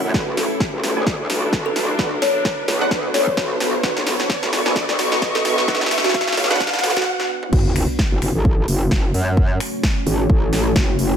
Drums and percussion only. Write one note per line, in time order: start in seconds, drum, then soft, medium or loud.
0.14 kick loud
0.14 snare medium
0.37 snare medium
0.37 open hi-hat loud
0.60 kick loud
0.60 snare medium
0.84 snare medium
0.84 open hi-hat medium
1.06 kick loud
1.06 snare medium
1.30 snare medium
1.30 open hi-hat loud
1.53 kick loud
1.53 snare medium
1.76 snare medium
1.76 open hi-hat medium
1.99 kick loud
1.99 snare medium
2.22 snare medium
2.22 open hi-hat loud
2.45 kick loud
2.45 snare medium
2.68 snare medium
2.68 open hi-hat medium
2.91 kick loud
2.91 snare medium
3.14 snare medium
3.14 open hi-hat loud
3.27 kick medium
3.37 kick loud
3.37 snare medium
3.60 snare medium
3.60 open hi-hat medium
3.83 kick loud
3.83 snare medium
3.97 snare medium
4.07 snare medium
4.07 open hi-hat loud
4.20 snare medium
4.30 kick loud
4.30 snare medium
4.43 snare medium
4.53 snare medium
4.53 open hi-hat medium
4.66 snare medium
4.76 kick loud
4.76 snare loud
4.89 snare medium
4.99 snare loud
4.99 open hi-hat loud
5.12 snare medium
5.22 kick loud
5.22 snare loud
5.35 snare medium
5.45 snare loud
5.45 open hi-hat medium
5.58 snare medium
5.68 kick loud
5.68 snare loud
5.75 snare medium
5.81 snare medium
5.86 snare medium
5.91 snare loud
5.91 open hi-hat loud
5.98 snare medium
6.04 snare loud
6.09 snare medium
6.14 kick loud
6.14 snare loud
6.21 snare medium
6.27 snare medium
6.32 snare medium
6.37 snare loud
6.37 open hi-hat medium
6.44 snare medium
6.51 snare loud
6.55 snare loud
6.60 kick loud
6.60 snare loud
6.67 snare medium
6.73 snare loud
6.79 snare loud
6.84 snare loud
6.84 open hi-hat loud
6.90 snare loud
6.97 kick medium
6.97 snare loud
7.02 snare loud
7.07 high tom medium
7.20 snare medium
7.43 mid tom medium
7.53 kick loud
7.53 crash loud
7.76 finger snap medium
7.76 open hi-hat loud
7.99 kick loud
7.99 snare loud
8.22 finger snap medium
8.22 open hi-hat medium
8.45 kick loud
8.68 open hi-hat loud
8.91 kick loud
8.91 snare loud
9.14 open hi-hat medium
9.37 kick loud
9.60 finger snap medium
9.60 open hi-hat loud
9.83 kick loud
9.83 snare loud
10.07 open hi-hat medium
10.30 kick loud
10.53 snare medium
10.53 open hi-hat loud
10.76 kick loud
10.76 snare loud
10.99 open hi-hat loud